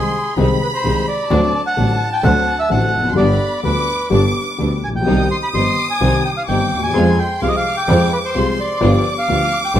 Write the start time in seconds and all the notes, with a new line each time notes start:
Already playing: C2 C3 D#3 G#3 C4 G#4 C6
0.37 C2 C3 D#3 G#3 C4 D#4 G#4 B5
0.63 B4
0.74 C5
0.84 C2 C3 D#3 G#3 C4 D#4 G#4
1.08 D5
1.30 D2 D3 F#3 A3 C4 D4 F#4 A5
1.67 F#5
1.77 A1 A2 D3 F#3 A3 C4 D4 F#4
2.13 G5
2.23 D2 D3 F#3 A3 C4 D4 F#4 F#5
2.59 E5
2.69 A1 A2 D3 F#3 A3 C4 D4 F#4 F#5
2.93 F1
2.98 E2
3.04 F2
3.10 F#2 C6
3.15 G1 G2 D3 G3 B3 D4 G4 D5 B5
3.63 D2 D3 G3 B3 D4 G4 B4 D6
4.10 G1 G2 D3 G3 B3 D4 G4 D6
4.58 D2 D3 G3 B3 D4 G4
4.83 A#1 G#5
4.89 A1
4.95 A#1 G5
5.01 B1
5.06 C2 C3 D#3 G3 C4 D#4 G4 D#6
5.31 C6
5.43 B5
5.53 G1 G2 D#3 G3 C4 D#4 G4 C6
5.91 G#5
6.01 C2 C3 D#3 G3 C4 D#4 G4
6.25 G5
6.37 F5
6.48 G1 G2 D#3 G3 C4 D#4 G4 G5 D6
6.72 D#2
6.77 D2
6.83 D#2 G#5
6.88 E2
6.93 F2 F3 G#3 C4 F4 G#4 C6
7.19 G5
7.41 C2 C3 F3 G#3 C4 F4 G#4 F5 D6
7.48 D#5
7.57 F5
7.77 G5
7.87 F2 F3 G#3 C4 F4 G#4
8.13 B4
8.25 C5
8.35 C2 C3 F3 G#3 C4 F4 G#4 C6
8.60 D5
8.80 G1 G2 F3 G3 B3 D4 F4 G4 D6
9.19 F5
9.28 D2 D3 F3 G3 B3 D4 F4 G4
9.65 G5
9.74 G1 G2 F3 G3 B3 D4 F4 G4